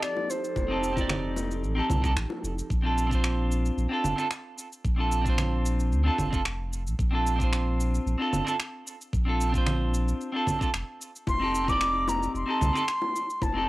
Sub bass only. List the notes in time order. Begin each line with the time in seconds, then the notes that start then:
0.56 F1
1.63 A1
1.90 C2
2.17 A1
2.44 F1
2.70 A#1
3.77 A#1
4.04 F1
4.85 A#1
5.92 D2
6.18 F1
6.86 A#1
6.99 A#1
8.06 A#1
8.33 F1
9.13 A#1
10.74 F1
11.27 F1
12.34 F1
12.61 C2
13.42 F1